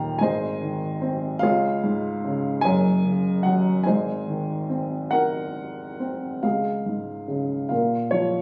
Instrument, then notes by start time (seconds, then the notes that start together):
upright piano
Already playing: D#1 D#2 A#2 D#3 A#4 C5 D#5 G5 A#5 C6
0.19 G#1 G#2 G#4 D#5 G#5
0.23 C5
0.62 D#3
1.02 C4
1.39 C#2 G#4 C#5 F5
1.43 F4
1.84 G#2
2.24 C#3
2.61 F#1 F#2 G#4 C#5 G#5
3.05 C#3
3.43 F#3 F#4 F#5
3.83 G#1 G#2 G#4 C5 D#5 G#5
4.27 D#3
4.69 C4
5.11 D#4 A#4 F#5
6.00 C4
6.43 C#2 G#4 F5
6.86 G#2
7.28 C#3
7.69 A#2 A#4 F5
8.11 F3 F4 C#5